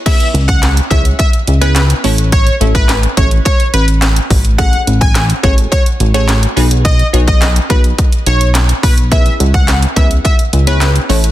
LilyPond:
<<
  \new Staff \with { instrumentName = "Digital synth lead" } { \time 4/4 \key cis \minor \tempo 4 = 106 e''8 r16 fis''8 r16 e''16 r16 e''16 r8 b'8 r8. | cis''8 r16 b'8 r16 cis''16 r16 cis''8 b'16 r4 r16 | fis''8 r16 gis''8 r16 cis''16 r16 cis''16 r8 cis''8 r8. | dis''8 r16 dis''8 r16 b'16 r8. cis''8 r8 b'16 r16 |
e''8 r16 fis''8 r16 e''16 r16 e''16 r8 b'8 r8. | }
  \new Staff \with { instrumentName = "Synth stab" } { \time 4/4 \key cis \minor <b cis' e' gis' b'>4 r8 <b cis' e' gis' cis''>8. r8 <b cis' e' gis' b'>8. <a cis' e' a' cis''>8~ | <a cis' e' a' cis''>16 r16 <a cis' e' a' e''>8 r8 <a cis' e' a' cis''>4~ <a cis' e' a' cis''>16 r4 r16 | <a cis' fis' gis' a'>4 r8 <a cis' fis' gis' a'>8. r8 <a cis' fis' gis' a'>8. <b dis' fis' gis' b'>8~ | <b dis' fis' gis' b'>16 r16 <b dis' fis' gis' cis''>8 r8 <b dis' fis' gis' b'>4~ <b dis' fis' gis' b'>16 r4 r16 |
<b cis' e' gis' b'>4 r8 <b cis' e' gis' b'>8. r8 <b cis' e' gis' cis''>8. <a cis' e' a' cis''>8 | }
  \new Staff \with { instrumentName = "Analog synth bass" } { \clef bass \time 4/4 \key cis \minor r8 cis,4 cis,8 r8 cis,4 a,,8~ | a,,8 a,,4 a,,8 r8 a,,4 a,,8~ | a,,8 a,,4 a,,8 r8 a,,4 b,,8~ | b,,8 b,,4 b,,8 r8 b,,4 b,,8~ |
b,,8 cis,4 cis,8 r8 cis,4 a,,8 | }
  \new DrumStaff \with { instrumentName = "Drums" } \drummode { \time 4/4 <cymc hh bd>16 hh16 hh16 <hh bd>16 <hc hh sn>16 hh16 <hh bd>16 hh16 <hh bd>16 hh16 hh16 hh16 <hc hh sn>16 hh16 hho16 hh16 | <hh bd>16 hh16 hh16 <hh bd>16 <hc hh sn>16 hh16 <hh bd>16 hh16 <hh bd>16 hh16 hh16 hh16 <hc hh sn>16 hh16 <hho bd>16 hh16 | <hh bd>16 hh16 hh16 <hh bd>16 <hc hh sn>16 hh16 <hh bd>16 hh16 <hh bd>16 hh16 hh16 hh16 <hc hh sn>16 hh16 hho16 hh16 | <hh bd>16 hh16 hh16 <hh bd>16 <hc hh sn>16 hh16 <hh bd>16 hh16 <hh bd>16 hh16 hh16 hh16 <hc hh sn>16 hh16 <hho bd>16 hh16 |
<hh bd>16 hh16 hh16 <hh bd>16 <hc hh sn>16 hh16 <hh bd>16 hh16 <hh bd>16 hh16 hh16 hh16 <hc hh sn>16 hh16 hho16 hh16 | }
>>